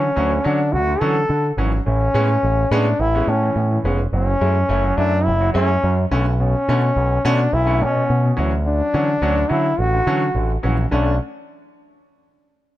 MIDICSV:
0, 0, Header, 1, 4, 480
1, 0, Start_track
1, 0, Tempo, 566038
1, 1577, Time_signature, 4, 2, 24, 8
1, 10831, End_track
2, 0, Start_track
2, 0, Title_t, "Trombone"
2, 0, Program_c, 0, 57
2, 0, Note_on_c, 0, 61, 102
2, 384, Note_on_c, 0, 62, 91
2, 397, Note_off_c, 0, 61, 0
2, 617, Note_on_c, 0, 66, 102
2, 630, Note_off_c, 0, 62, 0
2, 848, Note_on_c, 0, 69, 115
2, 860, Note_off_c, 0, 66, 0
2, 1333, Note_off_c, 0, 69, 0
2, 1582, Note_on_c, 0, 61, 103
2, 2306, Note_on_c, 0, 62, 97
2, 2318, Note_off_c, 0, 61, 0
2, 2546, Note_on_c, 0, 64, 114
2, 2559, Note_off_c, 0, 62, 0
2, 2793, Note_on_c, 0, 61, 92
2, 2805, Note_off_c, 0, 64, 0
2, 3267, Note_off_c, 0, 61, 0
2, 3519, Note_on_c, 0, 61, 100
2, 4214, Note_on_c, 0, 62, 109
2, 4227, Note_off_c, 0, 61, 0
2, 4447, Note_on_c, 0, 64, 104
2, 4460, Note_off_c, 0, 62, 0
2, 4691, Note_off_c, 0, 64, 0
2, 4696, Note_on_c, 0, 61, 104
2, 5146, Note_off_c, 0, 61, 0
2, 5435, Note_on_c, 0, 61, 101
2, 6160, Note_on_c, 0, 62, 103
2, 6172, Note_off_c, 0, 61, 0
2, 6390, Note_on_c, 0, 64, 123
2, 6403, Note_off_c, 0, 62, 0
2, 6638, Note_on_c, 0, 61, 101
2, 6651, Note_off_c, 0, 64, 0
2, 7110, Note_off_c, 0, 61, 0
2, 7352, Note_on_c, 0, 62, 99
2, 8061, Note_on_c, 0, 64, 101
2, 8073, Note_off_c, 0, 62, 0
2, 8307, Note_on_c, 0, 66, 100
2, 8319, Note_off_c, 0, 64, 0
2, 9022, Note_off_c, 0, 66, 0
2, 9257, Note_on_c, 0, 62, 99
2, 9480, Note_off_c, 0, 62, 0
2, 10831, End_track
3, 0, Start_track
3, 0, Title_t, "Grand piano"
3, 0, Program_c, 1, 0
3, 134, Note_on_c, 1, 54, 74
3, 142, Note_on_c, 1, 61, 89
3, 245, Note_off_c, 1, 54, 0
3, 248, Note_off_c, 1, 61, 0
3, 259, Note_on_c, 1, 50, 64
3, 367, Note_off_c, 1, 50, 0
3, 373, Note_on_c, 1, 54, 76
3, 377, Note_on_c, 1, 61, 85
3, 485, Note_off_c, 1, 54, 0
3, 487, Note_off_c, 1, 61, 0
3, 612, Note_on_c, 1, 54, 23
3, 615, Note_on_c, 1, 61, 28
3, 662, Note_off_c, 1, 54, 0
3, 663, Note_off_c, 1, 61, 0
3, 741, Note_on_c, 1, 50, 71
3, 849, Note_off_c, 1, 50, 0
3, 854, Note_on_c, 1, 52, 77
3, 859, Note_on_c, 1, 54, 74
3, 859, Note_on_c, 1, 61, 85
3, 966, Note_off_c, 1, 52, 0
3, 968, Note_off_c, 1, 54, 0
3, 968, Note_off_c, 1, 61, 0
3, 1093, Note_on_c, 1, 50, 57
3, 1205, Note_off_c, 1, 50, 0
3, 1338, Note_on_c, 1, 52, 75
3, 1338, Note_on_c, 1, 54, 67
3, 1342, Note_on_c, 1, 61, 78
3, 1448, Note_off_c, 1, 52, 0
3, 1448, Note_off_c, 1, 54, 0
3, 1450, Note_off_c, 1, 61, 0
3, 1464, Note_on_c, 1, 61, 28
3, 1465, Note_on_c, 1, 54, 22
3, 1509, Note_off_c, 1, 54, 0
3, 1509, Note_off_c, 1, 61, 0
3, 1579, Note_on_c, 1, 45, 66
3, 1582, Note_on_c, 1, 52, 60
3, 1689, Note_off_c, 1, 45, 0
3, 1690, Note_off_c, 1, 52, 0
3, 1817, Note_on_c, 1, 56, 92
3, 1819, Note_on_c, 1, 59, 85
3, 1824, Note_on_c, 1, 61, 98
3, 1928, Note_off_c, 1, 56, 0
3, 1929, Note_off_c, 1, 59, 0
3, 1931, Note_off_c, 1, 61, 0
3, 1944, Note_on_c, 1, 59, 23
3, 1945, Note_on_c, 1, 61, 30
3, 1989, Note_off_c, 1, 59, 0
3, 1990, Note_off_c, 1, 61, 0
3, 2302, Note_on_c, 1, 56, 102
3, 2303, Note_on_c, 1, 59, 95
3, 2311, Note_on_c, 1, 61, 111
3, 2411, Note_off_c, 1, 56, 0
3, 2411, Note_off_c, 1, 59, 0
3, 2415, Note_off_c, 1, 61, 0
3, 2669, Note_on_c, 1, 56, 78
3, 2671, Note_on_c, 1, 59, 81
3, 2673, Note_on_c, 1, 61, 82
3, 2775, Note_off_c, 1, 56, 0
3, 2776, Note_off_c, 1, 59, 0
3, 2776, Note_off_c, 1, 61, 0
3, 2909, Note_on_c, 1, 45, 68
3, 2910, Note_on_c, 1, 52, 64
3, 3015, Note_off_c, 1, 45, 0
3, 3015, Note_off_c, 1, 52, 0
3, 3026, Note_on_c, 1, 59, 25
3, 3029, Note_on_c, 1, 61, 25
3, 3071, Note_off_c, 1, 59, 0
3, 3073, Note_off_c, 1, 61, 0
3, 3143, Note_on_c, 1, 52, 59
3, 3144, Note_on_c, 1, 45, 59
3, 3252, Note_off_c, 1, 52, 0
3, 3253, Note_off_c, 1, 45, 0
3, 3263, Note_on_c, 1, 59, 64
3, 3264, Note_on_c, 1, 56, 77
3, 3266, Note_on_c, 1, 61, 82
3, 3372, Note_off_c, 1, 59, 0
3, 3373, Note_off_c, 1, 56, 0
3, 3373, Note_off_c, 1, 61, 0
3, 3503, Note_on_c, 1, 54, 62
3, 3612, Note_off_c, 1, 54, 0
3, 3620, Note_on_c, 1, 64, 30
3, 3622, Note_on_c, 1, 57, 27
3, 3668, Note_off_c, 1, 64, 0
3, 3670, Note_off_c, 1, 57, 0
3, 3740, Note_on_c, 1, 56, 77
3, 3740, Note_on_c, 1, 57, 64
3, 3743, Note_on_c, 1, 64, 88
3, 3851, Note_off_c, 1, 56, 0
3, 3851, Note_off_c, 1, 57, 0
3, 3852, Note_off_c, 1, 64, 0
3, 3977, Note_on_c, 1, 57, 78
3, 3982, Note_on_c, 1, 64, 94
3, 4090, Note_off_c, 1, 57, 0
3, 4092, Note_off_c, 1, 64, 0
3, 4098, Note_on_c, 1, 54, 66
3, 4210, Note_off_c, 1, 54, 0
3, 4217, Note_on_c, 1, 57, 77
3, 4222, Note_on_c, 1, 64, 83
3, 4330, Note_off_c, 1, 57, 0
3, 4332, Note_off_c, 1, 64, 0
3, 4460, Note_on_c, 1, 57, 27
3, 4460, Note_on_c, 1, 64, 28
3, 4509, Note_off_c, 1, 57, 0
3, 4509, Note_off_c, 1, 64, 0
3, 4585, Note_on_c, 1, 54, 65
3, 4694, Note_off_c, 1, 54, 0
3, 4699, Note_on_c, 1, 56, 89
3, 4705, Note_on_c, 1, 57, 80
3, 4705, Note_on_c, 1, 64, 100
3, 4811, Note_off_c, 1, 56, 0
3, 4814, Note_off_c, 1, 57, 0
3, 4814, Note_off_c, 1, 64, 0
3, 4942, Note_on_c, 1, 54, 57
3, 5053, Note_off_c, 1, 54, 0
3, 5184, Note_on_c, 1, 50, 85
3, 5185, Note_on_c, 1, 57, 76
3, 5186, Note_on_c, 1, 61, 97
3, 5294, Note_off_c, 1, 50, 0
3, 5294, Note_off_c, 1, 57, 0
3, 5294, Note_off_c, 1, 61, 0
3, 5311, Note_on_c, 1, 57, 23
3, 5313, Note_on_c, 1, 61, 30
3, 5355, Note_off_c, 1, 57, 0
3, 5356, Note_off_c, 1, 61, 0
3, 5427, Note_on_c, 1, 47, 62
3, 5535, Note_off_c, 1, 47, 0
3, 5670, Note_on_c, 1, 50, 93
3, 5674, Note_on_c, 1, 57, 86
3, 5674, Note_on_c, 1, 61, 93
3, 5771, Note_off_c, 1, 61, 0
3, 5772, Note_off_c, 1, 57, 0
3, 5777, Note_off_c, 1, 50, 0
3, 5784, Note_on_c, 1, 57, 25
3, 5784, Note_on_c, 1, 61, 28
3, 5832, Note_off_c, 1, 57, 0
3, 5832, Note_off_c, 1, 61, 0
3, 6145, Note_on_c, 1, 50, 104
3, 6147, Note_on_c, 1, 57, 93
3, 6151, Note_on_c, 1, 61, 117
3, 6254, Note_off_c, 1, 50, 0
3, 6255, Note_off_c, 1, 57, 0
3, 6257, Note_off_c, 1, 61, 0
3, 6498, Note_on_c, 1, 50, 79
3, 6499, Note_on_c, 1, 57, 76
3, 6503, Note_on_c, 1, 61, 83
3, 6610, Note_off_c, 1, 50, 0
3, 6611, Note_off_c, 1, 57, 0
3, 6613, Note_off_c, 1, 61, 0
3, 6738, Note_on_c, 1, 47, 68
3, 6850, Note_off_c, 1, 47, 0
3, 6867, Note_on_c, 1, 61, 26
3, 6868, Note_on_c, 1, 57, 24
3, 6913, Note_off_c, 1, 57, 0
3, 6913, Note_off_c, 1, 61, 0
3, 6980, Note_on_c, 1, 47, 62
3, 7091, Note_off_c, 1, 47, 0
3, 7092, Note_on_c, 1, 52, 76
3, 7095, Note_on_c, 1, 54, 70
3, 7096, Note_on_c, 1, 61, 86
3, 7207, Note_off_c, 1, 52, 0
3, 7209, Note_off_c, 1, 54, 0
3, 7209, Note_off_c, 1, 61, 0
3, 7339, Note_on_c, 1, 50, 57
3, 7450, Note_off_c, 1, 50, 0
3, 7454, Note_on_c, 1, 54, 28
3, 7456, Note_on_c, 1, 61, 29
3, 7506, Note_off_c, 1, 54, 0
3, 7507, Note_off_c, 1, 61, 0
3, 7578, Note_on_c, 1, 52, 67
3, 7579, Note_on_c, 1, 54, 68
3, 7582, Note_on_c, 1, 61, 86
3, 7690, Note_off_c, 1, 52, 0
3, 7690, Note_off_c, 1, 54, 0
3, 7692, Note_off_c, 1, 61, 0
3, 7818, Note_on_c, 1, 54, 79
3, 7824, Note_on_c, 1, 61, 90
3, 7930, Note_off_c, 1, 54, 0
3, 7933, Note_off_c, 1, 61, 0
3, 7938, Note_on_c, 1, 50, 66
3, 8050, Note_off_c, 1, 50, 0
3, 8050, Note_on_c, 1, 54, 81
3, 8053, Note_on_c, 1, 61, 73
3, 8165, Note_off_c, 1, 54, 0
3, 8167, Note_off_c, 1, 61, 0
3, 8298, Note_on_c, 1, 54, 26
3, 8298, Note_on_c, 1, 61, 27
3, 8347, Note_off_c, 1, 54, 0
3, 8347, Note_off_c, 1, 61, 0
3, 8423, Note_on_c, 1, 50, 64
3, 8532, Note_off_c, 1, 50, 0
3, 8536, Note_on_c, 1, 52, 76
3, 8538, Note_on_c, 1, 54, 71
3, 8542, Note_on_c, 1, 61, 95
3, 8648, Note_off_c, 1, 52, 0
3, 8649, Note_off_c, 1, 54, 0
3, 8651, Note_off_c, 1, 61, 0
3, 8784, Note_on_c, 1, 50, 59
3, 8891, Note_off_c, 1, 50, 0
3, 9013, Note_on_c, 1, 54, 68
3, 9016, Note_on_c, 1, 52, 79
3, 9017, Note_on_c, 1, 61, 80
3, 9126, Note_off_c, 1, 54, 0
3, 9126, Note_off_c, 1, 61, 0
3, 9127, Note_off_c, 1, 52, 0
3, 9138, Note_on_c, 1, 54, 27
3, 9139, Note_on_c, 1, 61, 26
3, 9186, Note_off_c, 1, 54, 0
3, 9186, Note_off_c, 1, 61, 0
3, 9253, Note_on_c, 1, 50, 80
3, 9256, Note_on_c, 1, 57, 78
3, 9260, Note_on_c, 1, 61, 91
3, 9433, Note_off_c, 1, 50, 0
3, 9435, Note_off_c, 1, 57, 0
3, 9437, Note_off_c, 1, 61, 0
3, 10831, End_track
4, 0, Start_track
4, 0, Title_t, "Picked electric bass"
4, 0, Program_c, 2, 34
4, 145, Note_on_c, 2, 38, 107
4, 322, Note_off_c, 2, 38, 0
4, 389, Note_on_c, 2, 50, 114
4, 622, Note_on_c, 2, 38, 95
4, 635, Note_off_c, 2, 50, 0
4, 801, Note_off_c, 2, 38, 0
4, 862, Note_on_c, 2, 50, 106
4, 1040, Note_off_c, 2, 50, 0
4, 1100, Note_on_c, 2, 50, 110
4, 1279, Note_off_c, 2, 50, 0
4, 1334, Note_on_c, 2, 32, 95
4, 1516, Note_off_c, 2, 32, 0
4, 1583, Note_on_c, 2, 33, 105
4, 1762, Note_off_c, 2, 33, 0
4, 1818, Note_on_c, 2, 45, 93
4, 1998, Note_off_c, 2, 45, 0
4, 2061, Note_on_c, 2, 33, 100
4, 2241, Note_off_c, 2, 33, 0
4, 2299, Note_on_c, 2, 45, 105
4, 2480, Note_off_c, 2, 45, 0
4, 2540, Note_on_c, 2, 33, 97
4, 2720, Note_off_c, 2, 33, 0
4, 2777, Note_on_c, 2, 45, 99
4, 2959, Note_off_c, 2, 45, 0
4, 3017, Note_on_c, 2, 45, 93
4, 3199, Note_off_c, 2, 45, 0
4, 3257, Note_on_c, 2, 29, 95
4, 3439, Note_off_c, 2, 29, 0
4, 3497, Note_on_c, 2, 30, 115
4, 3679, Note_off_c, 2, 30, 0
4, 3740, Note_on_c, 2, 42, 90
4, 3921, Note_off_c, 2, 42, 0
4, 3979, Note_on_c, 2, 30, 105
4, 4160, Note_off_c, 2, 30, 0
4, 4222, Note_on_c, 2, 42, 113
4, 4472, Note_on_c, 2, 30, 109
4, 4485, Note_off_c, 2, 42, 0
4, 4649, Note_off_c, 2, 30, 0
4, 4706, Note_on_c, 2, 42, 106
4, 4885, Note_off_c, 2, 42, 0
4, 4948, Note_on_c, 2, 42, 117
4, 5127, Note_off_c, 2, 42, 0
4, 5184, Note_on_c, 2, 35, 107
4, 5545, Note_off_c, 2, 35, 0
4, 5669, Note_on_c, 2, 47, 82
4, 5847, Note_off_c, 2, 47, 0
4, 5905, Note_on_c, 2, 35, 108
4, 6084, Note_off_c, 2, 35, 0
4, 6149, Note_on_c, 2, 47, 109
4, 6327, Note_off_c, 2, 47, 0
4, 6385, Note_on_c, 2, 35, 114
4, 6628, Note_on_c, 2, 47, 117
4, 6640, Note_off_c, 2, 35, 0
4, 6806, Note_off_c, 2, 47, 0
4, 6868, Note_on_c, 2, 47, 99
4, 7046, Note_off_c, 2, 47, 0
4, 7106, Note_on_c, 2, 38, 100
4, 7465, Note_off_c, 2, 38, 0
4, 7583, Note_on_c, 2, 50, 89
4, 7763, Note_off_c, 2, 50, 0
4, 7816, Note_on_c, 2, 38, 98
4, 7998, Note_off_c, 2, 38, 0
4, 8063, Note_on_c, 2, 50, 105
4, 8242, Note_off_c, 2, 50, 0
4, 8299, Note_on_c, 2, 33, 84
4, 8479, Note_off_c, 2, 33, 0
4, 8538, Note_on_c, 2, 50, 98
4, 8719, Note_off_c, 2, 50, 0
4, 8775, Note_on_c, 2, 33, 96
4, 8957, Note_off_c, 2, 33, 0
4, 9023, Note_on_c, 2, 34, 93
4, 9201, Note_off_c, 2, 34, 0
4, 9260, Note_on_c, 2, 35, 95
4, 9481, Note_off_c, 2, 35, 0
4, 10831, End_track
0, 0, End_of_file